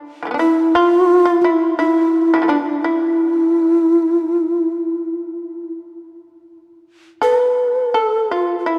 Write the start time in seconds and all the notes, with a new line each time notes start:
0.23 E3
0.27 A3
0.31 B3 D4
0.39 E4
0.75 F4
1.25 F4
1.42 E4
1.78 E4
2.34 D3 E3 E4
2.42 F3 A3
2.48 B3 D4
2.82 E4
3.89 F4
4.10 E4
4.46 F4
4.67 E4
7.22 A4 B4
7.43 B4
7.94 A4
8.31 F4
8.59 F4
8.66 E4